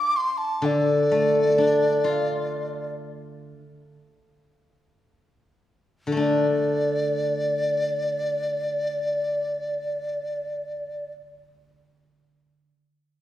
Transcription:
Already playing: dizi D6
0.16 dizi C6
0.38 dizi A5
0.62 guzheng D3, dizi D5
1.11 guzheng A3
1.58 guzheng D4
2.04 guzheng F4
6.07 guzheng D3
6.12 guzheng A3
6.17 guzheng D4, dizi D5

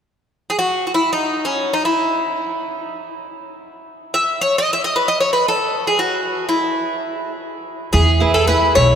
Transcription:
0.50 bouzouki G#4
0.59 bouzouki F#4
0.87 bouzouki F#4
0.94 bouzouki E4
1.13 bouzouki D#4
1.45 bouzouki C#4
1.73 bouzouki D#4
1.85 bouzouki E4
4.14 bouzouki E5
4.41 bouzouki C#5
4.58 bouzouki D#5
4.73 bouzouki E5
4.84 bouzouki D#5
4.96 bouzouki B4
5.08 bouzouki D#5
5.20 bouzouki C#5
5.33 bouzouki B4
5.48 bouzouki A4
5.87 bouzouki G#4
5.99 bouzouki F#4
6.49 bouzouki E4
7.93 upright bass E2, steel-string acoustic guitar E3, bouzouki G#4
8.20 steel-string acoustic guitar E4 G#4 B4
8.34 bouzouki A4
8.47 steel-string acoustic guitar E4 G#4 B4, bouzouki B4
8.75 upright bass B1, steel-string acoustic guitar B2, bouzouki C#5

